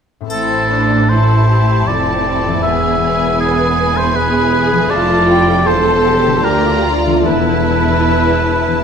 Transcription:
0.20 2.67 A2 soft
0.20 2.65 C4 soft
0.20 2.55 E4 soft
0.26 2.66 A4 soft
0.26 1.06 C5 soft
0.26 1.05 A5 soft
0.30 1.84 A1 soft
0.30 1.83 A2 soft
0.30 0.68 C4 soft
0.30 1.06 E4 soft
0.30 1.11 A4 soft
0.30 triangle soft
0.70 1.10 D4 soft
1.09 1.48 E4 soft
1.09 1.86 E4 soft
1.09 1.49 A4 soft
1.09 1.89 C5 soft
1.09 2.62 A5 soft
1.49 1.87 E4 soft
1.49 1.87 G4 soft
1.87 2.65 F1 soft
1.87 2.65 F2 soft
1.87 2.65 C4 soft
1.87 2.63 E4 soft
1.87 2.23 A4 soft
1.87 2.62 D5 medium
2.24 2.63 A4 soft
2.47 4.85 E3 soft
2.51 4.87 B3 soft
2.56 4.89 E4 soft
2.60 4.91 G#4 soft
2.60 3.38 E5 medium
2.64 4.87 E1 soft
2.64 4.86 E2 soft
2.64 4.15 B3 soft
2.64 3.01 G#4 soft
2.64 3.39 B4 soft
2.64 4.90 G#5 soft
3.03 3.40 G#4 soft
3.40 5.63 E4 soft
3.40 3.98 G#4 medium
3.40 4.14 B4 soft
3.97 4.17 C5 medium
4.15 4.52 G#4 soft
4.15 4.91 G#4 medium
4.15 4.91 B4 medium
4.53 4.90 G#4 soft
4.72 7.19 F3 soft
4.76 6.40 A3 soft
4.81 6.43 A4 soft
4.90 5.65 F1 soft
4.90 5.65 F2 soft
4.90 5.66 F4 medium
4.90 5.66 A4 soft
4.90 5.68 D5 medium
4.90 5.28 A5 medium
5.28 5.65 G5 medium
5.65 6.44 E1 soft
5.65 6.44 E2 soft
5.65 6.05 F4 soft
5.65 6.43 A4 soft
5.65 6.45 A4 medium
5.65 6.46 C5 medium
5.65 6.45 A5 soft
6.05 6.44 G4 medium
6.27 7.20 D3 soft
6.31 7.22 D4 soft
6.35 7.24 F4 soft
6.40 7.26 A#4 soft
6.44 7.24 D2 soft
6.44 7.25 F4 soft
6.44 6.84 G4 medium
6.44 6.97 A#4 medium
6.44 7.24 D5 soft
6.44 7.25 A#5 soft
6.85 7.25 F4 soft
7.06 8.67 E3 soft
7.11 8.71 B3 soft
7.16 8.76 E4 soft
7.20 8.84 A4 soft
7.25 8.84 E1 soft
7.25 8.84 E2 soft
7.25 8.84 E4 soft
7.25 8.83 E4 soft
7.25 8.84 B4 medium
7.25 8.84 B4 soft
7.25 8.83 A5 soft
8.68 8.84 E3 soft
8.72 8.84 B3 soft
8.77 8.84 E4 soft

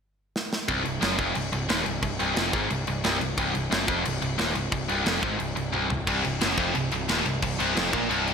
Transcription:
0.36 snare medium
0.53 snare medium
0.68 0.84 C1 medium
0.68 0.84 C2 loud
0.68 kick loud
0.68 crash medium
0.85 1.01 C1 medium
0.85 0.99 C2 medium
0.85 crash medium
1.01 1.18 F#1 medium
1.01 1.18 F#2 medium
1.01 snare loud
1.01 crash medium
1.18 1.35 F1 medium
1.18 1.35 F2 medium
1.18 kick loud
1.18 crash medium
1.35 1.52 C1 medium
1.35 1.49 C2 medium
1.35 crash medium
1.53 1.69 C1 medium
1.53 1.66 C2 medium
1.53 crash medium
1.69 1.86 D#1 medium
1.69 1.85 D#2 loud
1.69 snare loud
1.69 crash medium
1.85 2.02 C1 medium
1.85 1.99 C2 medium
1.85 crash medium
2.03 2.19 C1 medium
2.03 2.17 C2 medium
2.03 kick medium
2.03 crash medium
2.20 2.36 C1 medium
2.20 2.36 C2 loud
2.20 crash medium
2.36 2.53 F1 medium
2.36 2.52 F2 medium
2.36 snare loud
2.36 crash medium
2.53 2.69 G#1 medium
2.53 2.70 G#2 loud
2.53 kick loud
2.53 crash medium
2.70 2.86 C1 medium
2.70 2.84 C2 medium
2.70 crash medium
2.87 3.03 C1 medium
2.87 3.01 C2 medium
2.87 crash medium
3.04 3.20 C1 medium
3.04 3.19 C2 loud
3.04 snare loud
3.04 crash medium
3.20 3.37 C1 medium
3.20 3.34 C2 medium
3.20 crash medium
3.38 3.53 C1 loud
3.38 3.53 C2 loud
3.38 kick loud
3.38 crash medium
3.54 3.71 C1 medium
3.54 3.68 C2 medium
3.54 crash medium
3.71 3.87 F#1 medium
3.71 3.87 F#2 loud
3.71 snare loud
3.71 crash medium
3.87 4.04 F1 loud
3.87 4.04 F2 loud
3.87 kick loud
3.87 crash medium
4.05 4.21 C1 medium
4.05 4.19 C2 medium
4.05 crash medium
4.22 4.38 C1 medium
4.22 4.35 C2 medium
4.22 crash medium
4.38 4.55 D#1 medium
4.38 4.54 D#2 loud
4.38 snare loud
4.38 crash medium
4.55 4.71 C1 medium
4.55 4.69 C2 medium
4.55 crash medium
4.72 4.88 C1 medium
4.72 4.86 C2 medium
4.72 kick loud
4.72 crash medium
4.88 5.05 C1 medium
4.88 5.05 C2 loud
4.88 crash medium
5.05 5.22 F1 medium
5.05 5.21 F2 loud
5.05 snare loud
5.05 crash medium
5.22 5.39 G#1 medium
5.22 5.38 G#2 loud
5.22 kick loud
5.22 crash medium
5.38 5.56 C1 medium
5.38 5.53 C2 medium
5.38 crash medium
5.56 5.73 C1 medium
5.56 5.70 C2 medium
5.56 crash medium
5.72 5.90 C1 medium
5.72 5.88 C2 loud
5.72 high tom medium
5.89 6.06 C1 medium
5.89 6.04 C2 medium
5.89 floor tom medium
6.07 6.23 C1 medium
6.07 6.23 C2 loud
6.07 kick loud
6.07 crash medium
6.24 6.41 C1 medium
6.24 6.38 C2 medium
6.24 crash medium
6.41 6.57 F#1 medium
6.41 6.58 F#2 loud
6.41 snare loud
6.41 crash medium
6.58 6.74 F1 medium
6.58 6.74 F2 loud
6.58 kick loud
6.58 crash medium
6.75 6.91 C1 medium
6.75 6.88 C2 medium
6.75 crash medium
6.91 7.08 C1 medium
6.91 7.06 C2 medium
6.91 crash medium
7.09 7.25 D#1 medium
7.09 7.25 D#2 loud
7.09 snare loud
7.09 crash medium
7.26 7.41 C1 medium
7.26 7.39 C2 medium
7.26 crash medium
7.43 7.59 C1 medium
7.43 7.56 C2 medium
7.43 kick medium
7.43 crash medium
7.59 7.75 C1 medium
7.59 7.75 C2 loud
7.59 crash medium
7.75 7.93 F1 medium
7.75 7.92 F2 loud
7.75 snare loud
7.75 crash medium
7.93 8.09 A#1 loud
7.93 8.09 A#2 loud
7.93 kick loud
7.93 crash medium
8.10 8.34 C1 medium
8.10 8.34 C2 loud
8.10 crash medium
8.28 crash medium

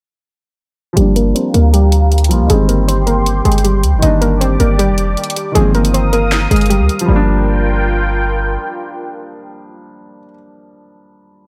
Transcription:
0.93 1.34 G1 loud
0.93 2.26 F3 medium
0.93 2.27 G3 medium
0.93 1.11 G4 medium
0.93 2.48 G4 medium
0.93 2.48 F5 medium
0.93 2.48 A#5 medium
0.93 closed hi-hat medium
0.97 1.12 G3 medium
0.97 2.29 A#3 medium
0.97 2.30 D4 medium
1.16 1.31 A#3 medium
1.16 1.31 A#4 medium
1.16 closed hi-hat medium
1.35 1.50 C4 medium
1.35 1.50 C5 medium
1.35 closed hi-hat medium
1.54 2.32 D2 loud
1.54 1.69 A#3 medium
1.54 1.69 A#4 medium
1.54 closed hi-hat medium
1.73 2.46 G3 medium
1.73 2.46 G4 medium
1.73 closed hi-hat medium
1.92 closed hi-hat medium
2.12 closed hi-hat soft
2.18 closed hi-hat medium
2.24 closed hi-hat medium
2.29 2.42 A#1 loud
2.29 2.49 F3 medium
2.29 2.47 G3 medium
2.29 2.50 A#3 medium
2.29 2.51 F4 medium
2.29 closed hi-hat medium
2.41 2.49 D2 loud
2.46 3.42 G1 loud
2.46 3.97 D#3 medium
2.46 3.99 G3 medium
2.46 4.01 G4 medium
2.46 2.64 G#4 loud
2.46 4.01 G5 medium
2.46 4.01 C6 medium
2.46 closed hi-hat medium
2.51 2.65 G#3 medium
2.51 4.01 C4 medium
2.69 2.84 A#3 medium
2.69 2.83 A#4 medium
2.69 closed hi-hat medium
2.88 3.03 C4 medium
2.88 3.03 C5 medium
2.88 closed hi-hat medium
3.07 3.43 A#3 medium
3.07 3.43 A#4 medium
3.07 closed hi-hat medium
3.26 closed hi-hat medium
3.45 3.85 G1 loud
3.45 3.60 G#3 medium
3.45 3.60 G#4 medium
3.45 closed hi-hat medium
3.52 closed hi-hat medium
3.58 closed hi-hat medium
3.64 4.01 G3 medium
3.64 4.00 G4 medium
3.64 closed hi-hat medium
3.83 3.95 D2 loud
3.83 closed hi-hat medium
3.94 4.02 G1 loud
3.99 4.58 G1 loud
3.99 5.50 D#3 medium
3.99 5.52 G3 medium
3.99 5.54 G4 medium
3.99 5.54 D5 medium
3.99 4.17 D#5 medium
3.99 5.54 D6 medium
3.99 closed hi-hat medium
4.03 5.53 A#3 medium
4.03 5.54 D4 medium
4.03 4.18 D#4 medium
4.21 4.37 A#3 medium
4.21 4.36 A#4 medium
4.21 closed hi-hat medium
4.41 4.56 C4 medium
4.41 4.55 C5 medium
4.41 closed hi-hat medium
4.60 4.91 G1 loud
4.60 4.75 A#3 medium
4.60 4.75 A#4 medium
4.60 closed hi-hat medium
4.79 5.52 G3 medium
4.79 5.51 G4 medium
4.79 closed hi-hat medium
4.89 5.16 F1 loud
4.98 closed hi-hat medium
5.17 closed hi-hat soft
5.24 closed hi-hat medium
5.30 closed hi-hat medium
5.36 closed hi-hat medium
5.52 6.47 G1 loud
5.52 7.03 D#3 medium
5.52 6.99 F3 medium
5.52 5.70 G#4 loud
5.52 7.07 A#4 medium
5.52 7.07 F5 medium
5.52 7.07 D#6 medium
5.52 closed hi-hat medium
5.56 5.70 G#3 medium
5.56 7.06 A#3 medium
5.56 7.07 C4 medium
5.75 5.90 A#3 medium
5.75 5.89 A#4 medium
5.75 closed hi-hat soft
5.85 closed hi-hat medium
5.94 6.09 C4 medium
5.94 6.08 C5 medium
5.94 closed hi-hat medium
6.13 6.49 A#3 medium
6.13 6.49 A#4 medium
6.13 closed hi-hat medium
6.32 snare loud
6.32 clap loud
6.32 closed hi-hat medium
6.51 6.82 G1 loud
6.51 6.66 G#3 medium
6.51 6.66 G#4 medium
6.51 closed hi-hat medium
6.56 closed hi-hat medium
6.61 closed hi-hat soft
6.66 closed hi-hat soft
6.70 7.06 G3 medium
6.70 7.06 G4 medium
6.70 closed hi-hat medium
6.80 6.89 D2 loud
6.89 closed hi-hat medium
6.99 10.19 F3 medium
6.99 closed hi-hat medium
7.06 8.57 G1 loud
7.06 10.24 G3 medium
7.06 8.19 G3 medium
7.06 10.26 F4 medium
7.06 10.26 A#4 medium
7.06 10.26 G5 medium
7.11 10.29 A#3 medium
7.16 10.34 D4 medium

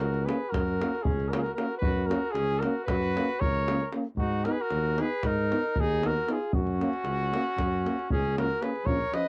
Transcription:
0.00 0.28 C#2 loud
0.00 0.27 F#4 medium
0.00 0.26 A#4 medium
0.00 davul high medium
0.14 davul high soft
0.25 0.37 A#3 medium
0.25 0.37 C#4 medium
0.25 0.51 G#4 medium
0.25 0.52 B4 medium
0.25 davul high medium
0.49 0.82 F#2 loud
0.49 1.04 F#4 medium
0.49 1.04 A#4 medium
0.54 davul high medium
0.54 davul low medium
0.68 davul high soft
0.81 0.91 A#3 medium
0.81 0.91 C#4 medium
0.81 davul high medium
0.95 davul high soft
1.02 1.48 C#2 medium
1.02 1.32 C#4 medium
1.02 1.30 G#4 medium
1.02 davul low loud
1.20 davul high soft
1.28 1.41 F#4 medium
1.28 1.40 A#4 medium
1.32 1.43 A#3 medium
1.32 1.42 C#4 medium
1.32 davul high medium
1.38 1.45 F4 soft
1.38 1.42 G#4 medium
1.38 1.53 A#4 medium
1.43 1.56 F#4 medium
1.43 davul high soft
1.54 1.66 A#3 medium
1.54 1.80 F#4 medium
1.54 1.77 A#4 medium
1.58 1.68 C#4 medium
1.58 davul high medium
1.78 2.08 F#4 medium
1.78 2.07 B4 medium
1.82 2.11 F#2 loud
1.82 davul low loud
2.06 2.19 A#3 medium
2.06 2.35 F#4 medium
2.06 2.32 A#4 medium
2.10 2.20 C#4 medium
2.10 davul high medium
2.31 2.62 C#4 medium
2.31 2.60 G#4 loud
2.35 2.64 C#2 medium
2.35 davul high medium
2.51 davul high soft
2.59 2.86 F#4 medium
2.59 2.84 A#4 medium
2.59 davul high medium
2.63 2.73 A#3 medium
2.63 2.74 C#4 medium
2.85 3.17 F#2 loud
2.85 3.42 F#4 medium
2.85 3.41 B4 loud
2.85 davul high medium
2.85 davul low medium
3.03 davul high soft
3.16 3.27 A#3 medium
3.16 3.26 C#4 medium
3.16 davul high medium
3.29 davul high soft
3.40 3.83 C#2 medium
3.40 3.90 A#4 medium
3.40 3.90 C#5 loud
3.40 davul low medium
3.55 davul high soft
3.68 3.78 A#3 medium
3.68 3.78 C#4 medium
3.68 davul high medium
3.80 davul high soft
3.92 4.04 A#3 medium
3.92 4.03 C#4 medium
3.92 davul high medium
4.16 4.46 G#2 medium
4.16 4.47 D#4 medium
4.16 4.46 F#4 medium
4.16 davul low medium
4.45 4.56 B3 medium
4.45 4.56 D#4 medium
4.45 4.53 F#4 medium
4.45 4.53 A#4 medium
4.45 davul high medium
4.51 4.62 G#4 medium
4.51 4.62 B4 medium
4.61 5.01 F#4 medium
4.61 5.02 A#4 medium
4.70 5.00 D#2 loud
4.70 davul high medium
4.85 davul high soft
4.98 5.08 B3 medium
4.98 5.09 D#4 medium
4.98 5.25 G#4 medium
4.98 5.28 B4 medium
4.98 davul high medium
5.23 5.53 G#2 medium
5.23 5.78 D#4 medium
5.23 5.81 A#4 loud
5.23 davul high medium
5.23 davul low medium
5.38 davul high soft
5.51 5.61 B3 medium
5.51 5.62 D#4 medium
5.51 davul high medium
5.64 davul high soft
5.76 6.18 D#2 loud
5.76 6.07 D#4 medium
5.76 davul low medium
5.80 6.08 G#4 loud
5.90 davul high soft
6.03 6.13 B3 medium
6.03 6.13 D#4 medium
6.03 6.31 F#4 medium
6.03 6.34 A#4 loud
6.03 davul high medium
6.17 davul high soft
6.28 6.37 B3 medium
6.28 6.38 D#4 medium
6.28 6.53 F4 medium
6.28 davul high medium
6.32 6.54 G#4 medium
6.53 6.81 F#2 loud
6.53 8.08 C#4 medium
6.53 8.08 F#4 loud
6.53 davul low medium
6.67 davul high soft
6.80 6.91 A#3 medium
6.80 6.90 C#4 medium
6.80 davul high medium
6.93 davul high soft
7.04 7.34 C#2 medium
7.04 davul high medium
7.19 davul high soft
7.33 7.43 A#3 medium
7.33 7.43 C#4 medium
7.33 davul high medium
7.46 davul high soft
7.57 7.87 F#2 medium
7.57 davul high medium
7.57 davul low medium
7.73 davul high soft
7.85 7.95 A#3 soft
7.85 7.95 C#4 medium
7.85 davul high medium
7.99 davul high soft
8.10 8.52 C#2 medium
8.10 8.35 C#4 medium
8.10 8.36 G#4 loud
8.10 davul low medium
8.25 davul high soft
8.36 8.46 A#3 medium
8.36 8.47 C#4 medium
8.36 8.64 F#4 medium
8.36 8.63 A#4 medium
8.36 davul high medium
8.50 davul high soft
8.61 8.71 A#3 medium
8.61 8.72 C#4 soft
8.61 8.88 G#4 medium
8.61 8.87 B4 medium
8.61 davul high medium
8.76 davul high soft
8.85 9.01 A#1 medium
8.85 8.96 F3 medium
8.85 8.97 C#4 medium
8.85 9.15 A#4 medium
8.85 9.15 C#5 loud
8.85 davul low medium
9.01 davul high soft
9.12 9.23 F3 medium
9.12 9.23 C#4 medium
9.12 9.28 B4 medium
9.12 9.28 D#5 medium
9.12 davul high medium

